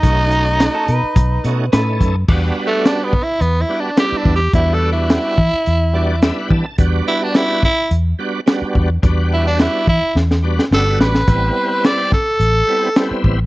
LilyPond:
<<
  \new Staff \with { instrumentName = "Clean electric guitar" } { \time 4/4 \key e \dorian \tempo 4 = 107 r4 dis'16 a'16 b'4. b'8. r16 | r1 | r1 | r1 |
r1 | r1 | }
  \new Staff \with { instrumentName = "Tenor saxophone" } { \time 4/4 \key e \dorian dis'2. r4 | \tuplet 3/2 { r4 a8 d'8 b8 e'8 b8 e'8 d'8 g'8 d'8 g'8 } | \tuplet 3/2 { e'8 a'8 e'8~ } e'2~ e'8. r16 | r8 e'16 d'16 e'8 e'8 r2 |
r8 e'16 d'16 e'8 e'8 r4 a'8 b'8~ | b'4 d''8 a'2 r8 | }
  \new Staff \with { instrumentName = "Tonewheel organ" } { \time 4/4 \key e \dorian << { r1 | r1 | r2 r8 d''8 e''16 fis''16 a''8 | r1 |
r1 | r1 | } \\ { <a cis' dis' fis'>4. r4 <a cis' dis' fis'>8 <a cis' dis' a'>8. r16 | <g b d' fis'>4. r4 <g b d' fis'>8 <g b d' e'>8. r16 | <g b d' fis'>4. r4 <g b d' fis'>8 <g b d' e'>8. r16 | <g b d' fis'>4. r4 <g b d' fis'>8 <g b d' fis'>8. r16 |
<g b d' fis'>4. r4 <g b d' fis'>8 <g b d' fis'>8. r16 | <g b c' e'>4. r4 <g b c' e'>8 <g b c' e'>8. r16 | } >> }
  \new Staff \with { instrumentName = "Fingered electric bass" } { \clef bass \time 4/4 \key e \dorian b,,4. b,16 r16 b,,8 b,8 a,8 fis,8 | e,8 r4. e,8 r4 e,8 | e,4. e16 r16 e,4. e16 r16 | e,8 r4. e,8 r4 e,8 |
e,4. e16 r16 e,4 g,,8 a,,8 | a,,8 r4. a,,8 r4 a,,8 | }
  \new DrumStaff \with { instrumentName = "Drums" } \drummode { \time 4/4 <hh bd>8 hh8 <hh sn>8 hh8 <hh bd>8 hh8 <hh sn>8 <hh bd>8 | <cymc bd>4 <hh sn>8 bd8 hh4 <hh sn>8 bd8 | <hh bd>4 <hh sn>8 bd8 hh4 <hh sn>8 bd8 | <hh bd>4 <hh sn>8 <bd sn>8 hh4 <hh sn>8 bd8 |
<hh bd>4 <hh sn>8 bd8 sn16 sn8 sn16 sn8 sn16 sn16 | <hh bd>4 <hh sn>8 <bd sn>8 hh4 <hh sn>8 bd8 | }
>>